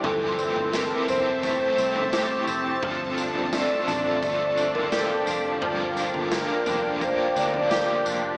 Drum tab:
TB |--x-x-x-x-x-x-x-|--x-x-x-x-x-x-x-|--x-x-x-x-x-x-x-|
SD |----o-------o---|----o-------o---|----o-------o---|
FT |o--o--o-o--o----|o--o--o-o--o----|o--o--o-o--o----|
BD |--------o-------|o-------o-------|--------o-------|